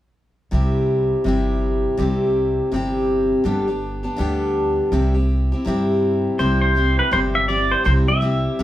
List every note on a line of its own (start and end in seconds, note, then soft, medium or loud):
0.51 1.11 C2 medium
0.51 1.23 C3 medium
0.51 1.26 G3 medium
0.51 1.25 C4 medium
0.51 1.26 E4 medium
0.51 1.28 G4 medium
1.24 1.85 G1 medium
1.24 1.96 C3 medium
1.24 1.98 G3 medium
1.24 1.98 C4 medium
1.24 1.99 E4 medium
1.28 2.01 G4 medium
1.97 2.58 C2 medium
1.97 2.70 C3 medium
1.97 2.72 G3 medium
1.97 2.72 C4 medium
1.97 2.73 E4 medium
2.02 2.75 G4 medium
2.72 3.32 G1 medium
2.72 3.44 C3 medium
2.72 3.45 G3 medium
2.72 3.45 C4 medium
2.72 3.46 E4 medium
2.76 3.46 G4 medium
3.44 4.05 G1 medium
3.44 3.67 G2 medium
3.44 3.68 D3 medium
3.44 3.68 G3 medium
3.44 3.68 B3 medium
3.44 3.68 D4 medium
3.44 3.66 G4 medium
3.68 4.05 G3 soft
3.68 4.03 B3 soft
3.68 4.03 D4 soft
3.68 4.03 G4 soft
4.03 4.17 G3 soft
4.03 4.18 B3 soft
4.03 4.19 D4 soft
4.03 4.18 G4 soft
4.16 4.79 D2 medium
4.16 4.91 G2 medium
4.16 4.91 D3 medium
4.16 4.92 G3 medium
4.16 4.92 B3 medium
4.20 4.93 D4 medium
4.20 4.93 G4 medium
4.92 5.52 C2 medium
4.92 5.15 C3 medium
4.92 5.15 G3 medium
4.92 5.15 C4 medium
4.92 5.14 E4 medium
4.92 5.13 G4 medium
5.14 5.52 C4 soft
5.14 5.52 E4 soft
5.14 5.51 G4 soft
5.52 5.66 C4 soft
5.52 5.66 E4 soft
5.52 5.66 G4 medium
5.65 6.26 G2 medium
5.65 6.38 C3 medium
5.65 6.38 G3 medium
5.65 6.39 C4 medium
5.65 6.39 E4 medium
5.65 6.40 G4 medium
6.39 6.99 C2 medium
6.39 6.76 C3 medium
6.39 6.75 G3 medium
6.39 6.75 C4 medium
6.39 6.76 E4 medium
6.39 6.78 G4 medium
6.39 6.60 C5 medium
6.61 6.99 C5 medium
6.75 7.11 G3 medium
6.75 7.11 C4 medium
6.75 7.12 E4 medium
6.75 7.13 G4 medium
6.99 7.12 B4 medium
7.11 7.72 G1 medium
7.11 7.49 C3 medium
7.11 7.48 G3 medium
7.11 7.48 C4 medium
7.11 7.48 E4 medium
7.11 7.50 G4 medium
7.11 7.19 C5 medium
7.35 7.48 E5 medium
7.48 7.85 G3 soft
7.48 7.84 C4 soft
7.48 7.85 E4 medium
7.48 7.86 G4 medium
7.48 7.71 D5 medium
7.72 7.85 C5 medium
7.84 8.45 C2 medium
7.84 8.08 C3 medium
7.84 8.08 G3 medium
7.84 8.08 C4 medium
7.84 8.08 E4 medium
7.84 8.06 G4 medium
7.84 7.92 C5 medium
8.07 8.21 C4 soft
8.07 8.21 E4 soft
8.07 8.22 G4 soft
8.07 8.63 E5 medium
8.21 8.59 G3 medium
8.21 8.59 C4 medium
8.21 8.59 E4 medium
8.21 8.60 G4 medium
8.59 8.63 G1 medium
8.59 8.63 C3 medium
8.59 8.63 G3 medium
8.59 8.63 C4 medium